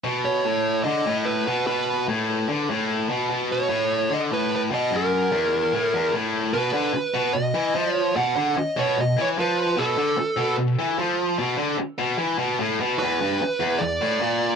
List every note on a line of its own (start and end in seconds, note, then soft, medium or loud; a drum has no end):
0.04 0.45 B2 medium
0.25 0.83 C#5 medium
0.45 0.85 A2 medium
0.84 1.06 D3 medium
0.84 1.27 D#5 medium
1.06 1.47 A2 medium
1.25 1.66 B4 medium
1.47 1.66 B2 medium
1.67 2.07 B2 medium
1.67 2.05 B4 medium
2.09 2.48 A2 medium
2.49 2.69 D3 medium
2.70 3.09 A2 medium
3.10 3.29 B2 medium
3.30 3.69 B2 loud
3.52 4.14 C#5 medium
3.69 4.10 A2 medium
4.10 4.31 D3 medium
4.10 4.18 D#5 medium
4.31 4.71 A2 medium
4.31 4.54 B4 medium
4.56 4.61 B4 medium
4.71 4.92 B2 medium
4.71 4.94 D#5 medium
4.91 5.31 F#2 loud
4.97 6.12 A#4 medium
5.32 5.73 E2 medium
5.73 5.93 A2 medium
5.94 6.14 E2 medium
6.14 6.54 A2 medium
6.54 6.73 B2 loud
6.54 7.31 B4 medium
6.74 6.93 D3 medium
6.94 muted distorted electric guitar stroke medium
7.14 7.33 B2 loud
7.33 7.51 B2 medium
7.33 7.95 D#5 medium
7.54 7.75 E3 medium
7.75 8.16 F3 loud
7.95 8.16 C#5 medium
8.17 8.36 B2 loud
8.17 8.58 F#5 medium
8.37 8.56 D3 loud
8.57 8.78 D#5 medium
8.57 muted distorted electric guitar stroke medium
8.77 8.97 B2 medium
8.77 8.99 C#5 medium
8.99 9.14 B2 medium
8.99 9.20 D#5 medium
9.18 9.37 E3 medium
9.18 9.26 C#5 medium
9.38 9.77 F3 medium
9.38 9.81 B4 medium
9.78 9.97 B2 loud
9.78 10.55 A4 medium
9.98 10.17 D3 medium
10.17 muted distorted electric guitar stroke medium
10.37 10.57 B2 loud
10.58 10.75 B2 medium
10.79 10.98 E3 medium
10.99 11.38 F3 medium
11.39 11.58 B2 loud
11.58 11.78 D3 medium
11.79 muted distorted electric guitar stroke medium
11.99 12.18 B2 medium
12.19 12.38 E3 medium
12.39 12.59 B2 medium
12.59 12.79 A2 loud
12.80 13.00 B2 medium
12.99 13.21 E2 loud
12.99 13.83 B4 medium
13.21 13.41 G2 medium
13.41 muted distorted electric guitar stroke medium
13.60 13.79 E2 medium
13.79 13.97 E2 medium
13.79 14.55 D5 medium
14.01 14.20 A2 medium
14.21 14.55 A#2 medium